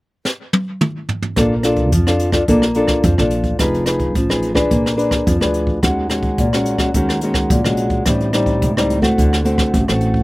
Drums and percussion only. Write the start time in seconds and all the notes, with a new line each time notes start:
0.25 snare
0.53 high tom
0.81 mid tom
1.09 floor tom
1.22 floor tom
1.36 kick, cross-stick, closed hi-hat
1.63 cross-stick, closed hi-hat
1.76 kick, closed hi-hat
1.92 kick, closed hi-hat
2.07 cross-stick, closed hi-hat
2.19 closed hi-hat
2.32 kick, cross-stick, closed hi-hat
2.48 kick, closed hi-hat
2.62 cross-stick
2.74 closed hi-hat
2.87 kick, cross-stick
3.04 kick, closed hi-hat
3.18 cross-stick
3.30 closed hi-hat
3.43 kick, closed hi-hat
3.59 kick, cross-stick, closed hi-hat
3.74 closed hi-hat
3.86 cross-stick, closed hi-hat
3.99 kick, closed hi-hat
4.15 kick, closed hi-hat
4.30 cross-stick
4.42 closed hi-hat
4.55 kick, cross-stick
4.71 kick, closed hi-hat
4.86 cross-stick, closed hi-hat
4.99 closed hi-hat
5.11 kick, cross-stick, closed hi-hat
5.27 kick, closed hi-hat
5.41 cross-stick, closed hi-hat
5.54 closed hi-hat
5.67 kick
5.83 kick, cross-stick, closed hi-hat
6.10 cross-stick, closed hi-hat
6.22 kick, closed hi-hat
6.38 kick, closed hi-hat
6.53 cross-stick, closed hi-hat
6.66 closed hi-hat
6.78 kick, cross-stick, closed hi-hat
6.94 kick, closed hi-hat
7.09 cross-stick
7.21 closed hi-hat
7.34 kick, cross-stick
7.50 kick, closed hi-hat
7.64 cross-stick
7.77 closed hi-hat
7.90 kick, closed hi-hat
8.06 kick, cross-stick, closed hi-hat
8.20 closed hi-hat
8.33 cross-stick, closed hi-hat
8.46 kick, closed hi-hat
8.62 kick, closed hi-hat
8.77 cross-stick
8.90 closed hi-hat
9.02 kick, cross-stick
9.18 kick, closed hi-hat
9.33 cross-stick, closed hi-hat
9.45 closed hi-hat
9.58 kick, cross-stick, closed hi-hat
9.74 kick, closed hi-hat
9.88 cross-stick, closed hi-hat
10.01 closed hi-hat
10.14 kick